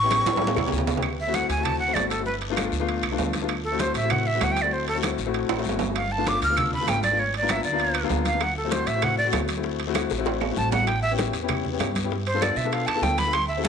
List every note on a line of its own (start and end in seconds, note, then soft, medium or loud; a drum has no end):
0.00 0.21 A1 loud
0.00 0.25 B3 medium
0.00 0.25 C#4 medium
0.00 0.25 E4 medium
0.00 0.73 C#6 loud
0.04 0.25 G4 loud
0.11 high bongo medium
0.11 high conga medium
0.11 high timbale medium
0.11 low timbale medium
0.11 short guiro medium
0.11 claves medium
0.25 0.55 A2 medium
0.25 high conga loud
0.25 high timbale medium
0.25 short guiro medium
0.34 0.56 B3 medium
0.34 0.56 C#4 medium
0.34 0.56 E4 medium
0.34 0.56 G4 medium
0.34 high conga medium
0.34 high timbale loud
0.42 high bongo medium
0.42 long guiro medium
0.47 high conga medium
0.47 low timbale medium
0.56 0.71 E2 medium
0.56 high bongo medium
0.56 low conga medium
0.56 high timbale medium
0.56 claves medium
0.65 0.87 B3 medium
0.65 0.87 C#4 medium
0.65 0.87 E4 medium
0.65 0.87 G4 medium
0.65 low conga medium
0.65 low timbale medium
0.72 1.44 D2 loud
0.72 high bongo medium
0.72 short guiro medium
0.77 low conga medium
0.77 low timbale medium
0.87 low bongo medium
0.87 low conga medium
0.87 low timbale medium
0.87 short guiro medium
0.96 1.04 B3 medium
0.96 1.04 C#4 medium
0.96 1.04 E4 medium
0.96 1.04 G4 medium
0.96 low conga medium
0.96 low timbale medium
1.03 high conga soft
1.03 high timbale medium
1.03 long guiro medium
1.03 claves medium
1.18 1.36 E5 medium
1.18 high conga soft
1.27 1.48 A3 medium
1.27 1.49 C4 medium
1.27 1.49 E4 medium
1.27 1.49 F#4 loud
1.34 1.50 F#5 medium
1.34 high conga medium
1.34 high timbale medium
1.34 low timbale medium
1.34 short guiro medium
1.49 1.92 D2 medium
1.49 1.65 G#5 medium
1.49 high conga soft
1.49 high timbale medium
1.49 short guiro medium
1.58 1.79 A3 medium
1.58 1.79 C4 medium
1.58 1.80 E4 medium
1.58 1.80 F#4 medium
1.64 1.78 A5 medium
1.64 high conga soft
1.64 low conga medium
1.64 high timbale medium
1.64 long guiro medium
1.64 claves medium
1.79 1.95 F#5 medium
1.79 high conga soft
1.88 2.10 A3 medium
1.88 2.10 C4 medium
1.88 2.10 E4 medium
1.88 2.10 F#4 medium
1.94 2.67 G1 medium
1.94 2.09 D5 medium
1.94 high conga medium
1.94 high timbale medium
1.94 low timbale medium
1.94 short guiro medium
1.94 claves medium
2.09 2.25 A4 medium
2.09 high timbale medium
2.09 short guiro medium
2.19 2.27 A3 medium
2.19 2.27 C4 medium
2.19 2.27 E4 medium
2.19 2.27 F#4 medium
2.26 2.35 B4 medium
2.26 high conga soft
2.26 long guiro medium
2.42 high conga soft
2.42 high timbale medium
2.50 2.71 A3 loud
2.50 2.72 B3 medium
2.50 2.72 D4 medium
2.50 2.72 F4 loud
2.57 high conga medium
2.57 high timbale medium
2.57 low timbale medium
2.57 short guiro medium
2.57 claves medium
2.72 3.01 D2 medium
2.72 short guiro medium
2.80 3.02 A3 loud
2.80 3.02 B3 medium
2.80 3.02 D4 medium
2.80 3.02 F4 loud
2.87 high conga soft
2.87 high timbale medium
2.87 long guiro medium
3.02 3.17 C2 medium
3.02 high conga soft
3.02 high timbale medium
3.02 claves medium
3.12 3.33 A3 medium
3.12 3.33 B3 medium
3.12 3.33 D4 medium
3.12 3.33 F4 medium
3.18 3.90 D2 medium
3.18 high conga medium
3.18 low timbale medium
3.18 short guiro medium
3.33 high conga medium
3.33 high timbale medium
3.33 short guiro medium
3.42 3.50 A3 medium
3.42 3.50 B3 medium
3.42 3.50 D4 medium
3.42 3.50 F4 medium
3.48 high conga soft
3.48 high timbale medium
3.48 long guiro medium
3.48 claves medium
3.64 3.81 A4 medium
3.64 high conga soft
3.72 3.94 A3 medium
3.72 3.94 C4 medium
3.72 3.94 E4 medium
3.72 3.94 F#4 medium
3.79 3.95 C5 medium
3.79 high conga medium
3.79 high timbale medium
3.79 low timbale medium
3.79 short guiro medium
3.94 4.38 A1 medium
3.94 4.13 E5 medium
3.94 high conga soft
3.94 high timbale medium
3.94 short guiro medium
4.03 4.25 A3 medium
4.03 4.25 C4 medium
4.03 4.25 E4 medium
4.03 4.25 F#4 medium
4.10 4.29 F#5 medium
4.10 high conga soft
4.10 low conga medium
4.10 high timbale medium
4.10 long guiro medium
4.10 claves medium
4.26 4.45 E5 medium
4.26 high conga soft
4.35 4.56 A3 medium
4.35 4.56 C4 medium
4.35 4.56 E4 medium
4.35 4.56 F#4 medium
4.41 5.12 D2 medium
4.41 4.53 F#5 medium
4.41 high conga medium
4.41 high timbale medium
4.41 low timbale medium
4.41 short guiro medium
4.41 claves medium
4.52 4.63 G5 medium
4.56 high timbale medium
4.56 short guiro medium
4.62 4.86 A3 medium
4.62 4.86 C4 medium
4.62 4.86 E4 medium
4.62 4.87 F#4 medium
4.62 4.75 D5 medium
4.71 4.87 C5 medium
4.71 high conga soft
4.71 long guiro medium
4.88 4.97 A4 medium
4.88 high conga soft
4.88 high timbale medium
4.95 5.17 A3 medium
4.95 5.17 C4 medium
4.95 5.17 E4 medium
4.95 5.18 F#4 medium
5.03 high conga medium
5.03 high timbale medium
5.03 low timbale medium
5.03 short guiro medium
5.03 claves medium
5.18 5.47 A1 medium
5.18 short guiro medium
5.26 5.48 A3 medium
5.26 5.48 C4 medium
5.26 5.48 E4 medium
5.26 5.48 F#4 loud
5.34 high conga soft
5.34 high timbale medium
5.34 long guiro medium
5.49 5.63 A1 medium
5.49 high conga soft
5.49 high timbale loud
5.49 claves medium
5.57 5.78 A3 medium
5.57 5.79 C4 medium
5.57 5.79 E4 medium
5.57 5.79 F#4 loud
5.57 high timbale medium
5.64 6.36 G1 medium
5.64 high conga medium
5.64 short guiro medium
5.69 low timbale medium
5.79 high conga medium
5.79 low timbale loud
5.79 short guiro medium
5.88 5.96 A3 medium
5.88 5.96 C4 medium
5.88 5.96 E4 medium
5.88 5.96 F#4 medium
5.95 6.13 F5 medium
5.95 high conga soft
5.95 high timbale medium
5.95 long guiro medium
5.95 claves medium
6.12 6.30 A5 medium
6.12 high conga soft
6.18 6.40 A3 medium
6.18 6.40 B3 medium
6.18 6.40 D4 medium
6.18 6.40 F4 medium
6.26 6.43 D6 loud
6.26 high conga loud
6.26 high timbale medium
6.26 low timbale medium
6.26 short guiro medium
6.41 6.84 D2 medium
6.41 6.59 F6 loud
6.41 high conga soft
6.41 high timbale medium
6.41 short guiro medium
6.50 6.71 A3 medium
6.50 6.71 B3 medium
6.50 6.71 D4 medium
6.50 6.72 F4 medium
6.57 6.72 E6 medium
6.57 high conga soft
6.57 low conga medium
6.57 high timbale medium
6.57 long guiro medium
6.57 claves medium
6.73 6.90 B5 medium
6.73 high conga soft
6.73 low conga medium
6.81 7.02 A3 medium
6.81 7.02 B3 medium
6.81 7.02 D4 medium
6.81 7.03 F4 medium
6.87 7.59 G#1 loud
6.87 7.03 G5 medium
6.87 high conga medium
6.87 high timbale medium
6.87 low timbale medium
6.87 short guiro medium
6.87 claves medium
7.03 7.21 D5 medium
7.03 high conga medium
7.03 high timbale medium
7.03 short guiro medium
7.12 7.19 A3 medium
7.12 7.19 B3 medium
7.12 7.19 D4 medium
7.12 7.19 F4 medium
7.17 7.34 C#5 medium
7.17 high conga soft
7.17 long guiro medium
7.34 7.52 D5 medium
7.34 high conga soft
7.34 high timbale medium
7.42 7.63 A#3 medium
7.42 7.64 B3 medium
7.42 7.64 D4 medium
7.42 7.64 F4 medium
7.48 7.64 E5 medium
7.48 high conga medium
7.48 high timbale medium
7.48 low timbale medium
7.48 short guiro medium
7.48 claves medium
7.63 8.07 D2 medium
7.63 8.07 D5 medium
7.63 short guiro medium
7.72 7.94 A#3 medium
7.72 7.94 B3 medium
7.72 7.94 D4 medium
7.72 7.95 F4 loud
7.79 high conga soft
7.79 high timbale medium
7.79 long guiro medium
7.94 high conga soft
7.94 high timbale medium
7.94 claves medium
8.03 8.25 A#3 medium
8.03 8.25 B3 medium
8.03 8.25 D4 medium
8.03 8.25 F4 loud
8.10 8.82 D2 medium
8.10 high conga medium
8.10 low timbale medium
8.10 short guiro medium
8.25 8.44 F5 medium
8.25 high conga medium
8.25 high timbale medium
8.25 short guiro medium
8.34 8.42 A#3 medium
8.34 8.42 B3 medium
8.34 8.42 D4 medium
8.34 8.42 F4 medium
8.40 8.57 F#5 medium
8.40 high bongo medium
8.40 high conga soft
8.40 high timbale medium
8.40 long guiro medium
8.40 claves medium
8.56 8.73 A4 medium
8.56 high conga soft
8.65 8.86 A3 medium
8.65 8.87 C4 medium
8.65 8.87 E4 medium
8.65 8.87 F#4 medium
8.71 8.88 C5 medium
8.71 high bongo medium
8.71 high conga loud
8.71 high timbale medium
8.71 low timbale medium
8.71 short guiro medium
8.86 9.30 A1 medium
8.86 9.05 E5 medium
8.86 high conga soft
8.86 high timbale medium
8.86 short guiro medium
8.95 9.17 A3 medium
8.95 9.17 C4 medium
8.95 9.17 E4 medium
8.95 9.17 F#4 medium
9.02 9.18 F#5 medium
9.02 high bongo medium
9.02 high conga soft
9.02 low conga medium
9.02 high timbale loud
9.02 long guiro medium
9.02 claves medium
9.18 9.28 D5 loud
9.18 high conga soft
9.25 9.47 A3 medium
9.25 9.48 C4 medium
9.25 9.48 E4 medium
9.25 9.48 F#4 medium
9.32 10.05 D2 loud
9.32 high bongo medium
9.32 low bongo medium
9.32 high conga medium
9.32 high timbale medium
9.32 low timbale medium
9.32 short guiro medium
9.32 claves medium
9.48 high timbale medium
9.48 short guiro medium
9.57 9.79 A3 medium
9.57 9.79 C4 medium
9.57 9.79 E4 medium
9.57 9.79 F#4 medium
9.63 high bongo medium
9.63 high conga soft
9.63 long guiro medium
9.80 high conga soft
9.80 high timbale medium
9.87 10.09 A3 loud
9.87 10.09 C4 medium
9.87 10.10 E4 medium
9.87 10.10 F#4 loud
9.95 high bongo loud
9.95 high conga medium
9.95 high timbale medium
9.95 low timbale medium
9.95 short guiro medium
9.95 claves medium
10.10 10.54 A1 medium
10.10 high bongo medium
10.10 short guiro medium
10.18 10.40 A3 medium
10.18 10.40 C4 medium
10.18 10.40 E4 loud
10.18 10.40 F#4 loud
10.25 high bongo medium
10.25 high conga soft
10.25 high timbale medium
10.25 long guiro medium
10.41 low bongo medium
10.41 high conga soft
10.41 low timbale medium
10.41 claves medium
10.50 10.71 A3 medium
10.50 10.71 C4 medium
10.50 10.72 E4 medium
10.50 10.72 F#4 medium
10.56 11.28 A1 medium
10.56 10.72 A5 medium
10.56 low bongo medium
10.56 high conga medium
10.56 short guiro medium
10.72 10.89 F#5 loud
10.72 low bongo medium
10.72 high conga medium
10.72 low timbale medium
10.72 short guiro medium
10.81 10.88 A3 medium
10.81 10.88 C4 medium
10.81 10.89 E4 medium
10.81 10.89 F#4 medium
10.87 11.02 G5 medium
10.87 high bongo medium
10.87 high conga soft
10.87 high timbale medium
10.87 long guiro medium
10.87 claves medium
11.02 11.12 E5 medium
11.02 high conga soft
11.11 11.33 B3 medium
11.11 11.33 C#4 medium
11.11 11.33 E4 medium
11.11 11.33 G4 medium
11.18 high bongo medium
11.18 high conga medium
11.18 high timbale medium
11.18 low timbale medium
11.18 short guiro medium
11.33 11.76 E2 medium
11.33 high conga soft
11.33 high timbale medium
11.33 short guiro medium
11.42 11.64 B3 medium
11.42 11.64 C#4 medium
11.42 11.64 E4 medium
11.42 11.64 G4 medium
11.48 high bongo medium
11.48 high conga soft
11.48 low conga medium
11.48 high timbale medium
11.48 long guiro medium
11.48 claves medium
11.65 high conga soft
11.65 low conga medium
11.72 11.94 B3 medium
11.72 11.94 C#4 medium
11.72 11.94 E4 medium
11.72 11.95 G4 medium
11.79 12.51 G2 medium
11.79 high bongo medium
11.79 low bongo medium
11.79 high conga medium
11.79 high timbale medium
11.79 low timbale medium
11.79 short guiro medium
11.79 claves medium
11.95 high conga medium
11.95 high timbale medium
11.95 short guiro medium
12.04 12.11 B3 medium
12.04 12.11 C#4 medium
12.04 12.12 E4 medium
12.04 12.12 G4 medium
12.11 high bongo medium
12.11 high conga soft
12.11 long guiro medium
12.27 12.44 C5 medium
12.27 high conga soft
12.27 high timbale medium
12.34 12.55 B3 medium
12.34 12.56 D4 medium
12.34 12.56 F4 medium
12.34 12.56 A4 medium
12.41 12.58 D5 medium
12.41 high bongo medium
12.41 high conga loud
12.41 high timbale medium
12.41 low timbale medium
12.41 short guiro medium
12.41 claves medium
12.56 12.85 B2 medium
12.56 12.75 E5 medium
12.56 high bongo soft
12.56 short guiro medium
12.64 12.86 B3 medium
12.64 12.87 D4 medium
12.64 12.87 F4 medium
12.64 12.87 A4 medium
12.72 12.88 F5 medium
12.72 high bongo medium
12.72 high conga soft
12.72 high timbale medium
12.72 long guiro medium
12.87 13.01 E2 medium
12.87 13.04 A5 loud
12.87 high bongo soft
12.87 high conga soft
12.87 high timbale medium
12.87 claves medium
12.95 13.17 B3 medium
12.95 13.17 D4 medium
12.95 13.18 F4 medium
12.95 13.18 A4 medium
13.02 13.68 D2 loud
13.02 13.20 G5 medium
13.02 high bongo medium
13.02 low bongo medium
13.02 high conga medium
13.02 low timbale medium
13.02 short guiro medium
13.18 13.35 B5 loud
13.18 high bongo soft
13.18 high conga medium
13.18 high timbale medium
13.18 short guiro medium
13.26 13.34 B3 medium
13.26 13.34 D4 medium
13.26 13.34 F4 medium
13.26 13.35 A4 medium
13.33 13.47 C6 medium
13.33 high bongo medium
13.33 high conga soft
13.33 high timbale medium
13.33 long guiro medium
13.33 claves medium
13.48 13.66 E5 medium
13.48 high conga soft
13.57 13.68 C4 medium
13.57 13.68 E4 medium
13.57 13.68 F#4 medium
13.57 13.68 A4 medium
13.64 13.68 A5 medium
13.64 high conga medium
13.64 high timbale medium
13.64 low timbale medium
13.64 short guiro medium